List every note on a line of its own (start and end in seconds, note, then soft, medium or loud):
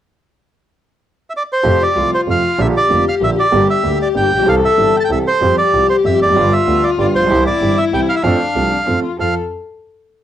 1.30 1.33 E5 medium
1.37 1.43 D5 medium
1.52 1.83 C5 medium
1.63 1.77 F2 medium
1.63 1.77 C3 medium
1.63 1.77 F3 medium
1.63 1.77 A3 medium
1.63 1.77 F4 medium
1.63 1.98 G4 medium
1.82 2.11 D5 medium
1.95 2.09 C2 soft
1.95 2.09 C3 soft
1.95 2.09 F3 soft
1.95 2.09 A3 soft
1.95 2.09 F4 soft
1.95 2.61 F4 medium
2.14 2.21 C5 medium
2.27 2.40 F2 soft
2.27 2.41 F2 soft
2.27 2.40 C3 soft
2.27 2.40 F3 soft
2.27 2.40 A3 soft
2.27 2.41 F4 soft
2.27 2.61 F5 medium
2.58 2.72 A#1 medium
2.58 2.72 A#2 medium
2.58 2.72 D3 medium
2.58 2.72 F3 medium
2.58 2.72 A#3 medium
2.58 2.72 F4 medium
2.58 3.52 G4 medium
2.58 2.67 E5 medium
2.77 3.05 D5 medium
2.90 3.03 F1 medium
2.90 3.03 F1 soft
2.90 3.03 F2 soft
2.90 3.03 D3 soft
2.90 3.03 F3 soft
2.90 3.03 A#3 soft
2.90 3.03 F4 soft
3.08 3.15 F5 medium
3.21 3.34 A#1 medium
3.21 3.34 A#1 soft
3.21 3.34 A#2 soft
3.21 3.34 D3 soft
3.21 3.34 F3 soft
3.21 3.35 A#3 soft
3.21 3.35 F4 soft
3.21 3.30 E5 medium
3.39 3.67 D5 medium
3.52 3.65 G1 medium
3.52 3.66 G1 medium
3.52 3.66 G2 medium
3.52 3.65 D3 medium
3.52 3.65 G3 medium
3.52 3.66 A#3 medium
3.52 4.48 G4 medium
3.52 3.66 G4 medium
3.70 3.99 E5 medium
3.83 3.97 D2 soft
3.83 3.97 D2 medium
3.83 3.97 D3 soft
3.83 3.97 G3 soft
3.83 3.97 A#3 soft
3.83 3.97 G4 soft
4.02 4.09 D5 medium
4.15 4.28 G1 soft
4.15 4.29 G1 medium
4.15 4.28 G2 soft
4.15 4.28 D3 soft
4.15 4.28 G3 soft
4.15 4.28 A#3 soft
4.15 4.28 G4 soft
4.15 4.48 G5 medium
4.32 4.39 A1 soft
4.32 4.47 A#1 soft
4.39 4.43 A#1 soft
4.39 4.47 B1 medium
4.46 4.60 C2 medium
4.46 4.60 C3 medium
4.46 4.59 E3 medium
4.46 4.60 G3 medium
4.46 4.60 C4 medium
4.46 4.60 G4 medium
4.46 5.26 A4 medium
4.46 4.55 F5 medium
4.65 4.96 E5 medium
4.77 4.91 G1 medium
4.77 4.92 G1 soft
4.77 4.91 G2 soft
4.77 4.91 E3 soft
4.77 4.91 G3 soft
4.77 4.91 C4 soft
4.77 4.91 G4 soft
5.00 5.03 A5 medium
5.05 5.11 G5 medium
5.10 5.23 C2 soft
5.10 5.23 C3 soft
5.10 5.23 E3 soft
5.10 5.23 G3 soft
5.10 5.23 C4 soft
5.10 5.23 G4 soft
5.10 5.19 E5 medium
5.27 5.56 C5 medium
5.42 5.55 F2 medium
5.42 5.55 F3 medium
5.42 5.55 G3 medium
5.42 5.55 C4 medium
5.42 6.37 G4 medium
5.42 5.55 G4 medium
5.58 5.87 D5 medium
5.73 5.86 C2 soft
5.73 5.87 C3 soft
5.73 5.86 F3 soft
5.73 5.87 G3 soft
5.73 5.87 C4 soft
5.73 5.87 G4 soft
5.89 5.96 C5 medium
6.05 6.18 F2 medium
6.05 6.18 F2 soft
6.05 6.18 F3 soft
6.05 6.18 G3 soft
6.05 6.18 C4 soft
6.05 6.18 G4 soft
6.05 6.20 E5 medium
6.21 6.35 F1 soft
6.21 6.28 E2 soft
6.21 6.53 D5 medium
6.28 6.32 F2 medium
6.28 6.36 F#2 medium
6.36 6.49 G1 medium
6.36 6.49 G2 medium
6.36 6.49 D3 medium
6.36 6.49 G3 medium
6.36 6.49 B3 medium
6.36 7.32 F4 medium
6.36 6.49 G4 medium
6.53 6.84 E5 medium
6.67 6.81 D2 medium
6.67 6.81 D3 medium
6.67 6.81 G3 soft
6.67 6.81 B3 soft
6.67 6.81 G4 soft
6.83 6.90 D5 medium
6.98 7.12 G1 medium
6.98 7.12 G2 medium
6.98 7.11 D3 soft
6.98 7.12 G3 soft
6.98 7.12 B3 soft
6.98 7.12 G4 soft
6.98 7.07 D5 medium
7.15 7.22 A1 soft
7.15 7.30 A#1 soft
7.15 7.44 C5 medium
7.22 7.26 A#1 medium
7.27 7.30 B1 medium
7.27 7.43 C2 medium
7.27 7.43 C3 medium
7.27 7.43 E3 medium
7.27 8.25 E4 medium
7.31 7.44 C2 medium
7.31 7.43 G3 medium
7.31 7.43 C4 medium
7.31 7.44 G4 medium
7.47 7.78 D5 medium
7.62 7.75 G1 medium
7.62 7.75 G2 soft
7.62 7.75 E3 soft
7.62 7.75 G3 soft
7.62 7.75 C4 soft
7.62 7.75 G4 soft
7.78 7.85 E5 medium
7.92 8.06 C2 medium
7.92 8.06 C2 soft
7.92 8.06 C3 medium
7.92 8.06 E3 soft
7.92 8.06 G3 soft
7.92 8.06 C4 soft
7.92 8.06 G4 soft
7.92 8.01 G5 medium
8.09 8.15 F5 medium
8.16 8.23 E5 medium
8.23 8.37 F2 medium
8.23 8.37 F3 medium
8.23 8.37 A3 medium
8.23 8.37 C4 medium
8.23 8.88 D4 medium
8.23 8.37 A4 medium
8.23 9.00 F5 medium
8.55 8.69 C2 soft
8.55 8.69 C2 medium
8.55 8.69 C3 soft
8.55 8.69 F3 soft
8.55 8.69 A3 soft
8.55 8.69 C4 soft
8.55 8.69 A4 soft
8.87 9.01 F2 soft
8.87 9.01 F2 medium
8.87 9.01 F3 soft
8.87 9.01 A3 soft
8.87 9.02 C4 medium
8.87 9.01 C4 soft
8.87 9.01 A4 soft
9.03 9.18 F4 medium
9.19 9.32 F2 soft
9.19 9.32 C4 soft
9.19 9.32 F4 soft
9.19 9.32 A4 soft
9.19 9.34 A4 medium
9.19 9.35 F5 medium